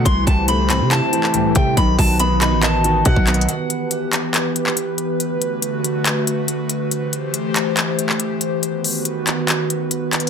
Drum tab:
HH |x-----x-----x-----x-----x-----x-----x-----x-----|x-----o-----x-----x-----x-----x-----x-----x-x-x-|x-----x-----x-----x-----x-----x-----x-----x-----|x-----x-----x-----x-----x-----x-----x-----x-----|
CP |------------------x-----x--------x--------------|------------------x-----x-----------------x-----|------------------x-----x--------x--------------|------------------------x-----------------------|
BD |o-----o-----------------------------------o-----|o-----o-----------------------------o--o--------|------------------------------------------------|------------------------------------------------|

HH |x-----x-----x-----x-----x-----x-----x-----x-----|x-----o-----x-----x-----x-----x-----x-----x-x---|
CP |------------------x-----x--------x--------------|------------------x-----x-----------------x-----|
BD |------------------------------------------------|------------------------------------------------|